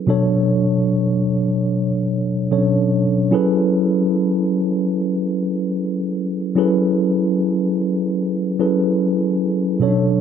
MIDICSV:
0, 0, Header, 1, 2, 480
1, 0, Start_track
1, 0, Key_signature, 3, "minor"
1, 0, Tempo, 810811
1, 44, Time_signature, 4, 2, 24, 8
1, 6043, End_track
2, 0, Start_track
2, 0, Title_t, "Tine electric piano"
2, 0, Program_c, 0, 4
2, 0, Control_c, 0, 64, 127
2, 39, Note_on_c, 0, 47, 82
2, 44, Note_on_c, 0, 54, 74
2, 50, Note_on_c, 0, 62, 73
2, 51, Control_c, 0, 64, 0
2, 55, Note_on_c, 0, 69, 73
2, 60, Note_on_c, 0, 73, 86
2, 155, Control_c, 0, 64, 127
2, 1458, Note_off_c, 0, 47, 0
2, 1460, Note_off_c, 0, 54, 0
2, 1464, Note_off_c, 0, 62, 0
2, 1466, Note_off_c, 0, 69, 0
2, 1468, Note_off_c, 0, 73, 0
2, 1484, Note_on_c, 0, 47, 58
2, 1486, Note_on_c, 0, 54, 54
2, 1489, Note_on_c, 0, 61, 44
2, 1491, Note_on_c, 0, 69, 56
2, 1495, Note_on_c, 0, 73, 67
2, 1525, Note_off_c, 0, 61, 0
2, 1528, Note_on_c, 0, 62, 54
2, 1952, Note_off_c, 0, 54, 0
2, 1959, Note_on_c, 0, 54, 80
2, 1963, Note_on_c, 0, 61, 71
2, 1964, Note_off_c, 0, 47, 0
2, 1967, Note_on_c, 0, 64, 71
2, 1968, Note_off_c, 0, 69, 0
2, 1970, Note_off_c, 0, 73, 0
2, 1971, Control_c, 0, 64, 0
2, 1971, Note_on_c, 0, 68, 72
2, 1976, Note_on_c, 0, 69, 73
2, 1979, Note_on_c, 0, 71, 87
2, 1986, Note_off_c, 0, 62, 0
2, 2090, Control_c, 0, 64, 127
2, 3858, Note_off_c, 0, 54, 0
2, 3860, Note_off_c, 0, 61, 0
2, 3862, Note_off_c, 0, 64, 0
2, 3864, Note_off_c, 0, 68, 0
2, 3866, Note_off_c, 0, 69, 0
2, 3868, Note_off_c, 0, 71, 0
2, 3880, Note_on_c, 0, 54, 73
2, 3885, Note_on_c, 0, 61, 67
2, 3889, Note_on_c, 0, 64, 68
2, 3891, Control_c, 0, 64, 0
2, 3894, Note_on_c, 0, 68, 65
2, 3897, Note_on_c, 0, 69, 69
2, 3900, Note_on_c, 0, 71, 78
2, 3993, Control_c, 0, 64, 127
2, 5058, Note_off_c, 0, 54, 0
2, 5061, Note_off_c, 0, 61, 0
2, 5063, Note_off_c, 0, 64, 0
2, 5065, Note_off_c, 0, 68, 0
2, 5067, Note_off_c, 0, 69, 0
2, 5068, Note_off_c, 0, 71, 0
2, 5087, Note_on_c, 0, 54, 53
2, 5088, Note_on_c, 0, 61, 49
2, 5090, Note_on_c, 0, 64, 50
2, 5092, Note_on_c, 0, 68, 51
2, 5094, Note_on_c, 0, 69, 51
2, 5096, Note_on_c, 0, 71, 61
2, 5798, Note_off_c, 0, 54, 0
2, 5799, Note_on_c, 0, 47, 69
2, 5803, Note_off_c, 0, 61, 0
2, 5805, Note_on_c, 0, 54, 63
2, 5807, Note_off_c, 0, 64, 0
2, 5807, Note_off_c, 0, 69, 0
2, 5808, Note_off_c, 0, 68, 0
2, 5810, Note_off_c, 0, 71, 0
2, 5810, Note_on_c, 0, 61, 52
2, 5812, Control_c, 0, 64, 0
2, 5814, Note_on_c, 0, 69, 64
2, 5820, Note_on_c, 0, 73, 77
2, 5845, Note_off_c, 0, 61, 0
2, 5848, Note_on_c, 0, 62, 63
2, 5904, Control_c, 0, 64, 127
2, 6043, Note_off_c, 0, 47, 0
2, 6043, Note_off_c, 0, 54, 0
2, 6043, Note_off_c, 0, 62, 0
2, 6043, Note_off_c, 0, 69, 0
2, 6043, Note_off_c, 0, 73, 0
2, 6043, End_track
0, 0, End_of_file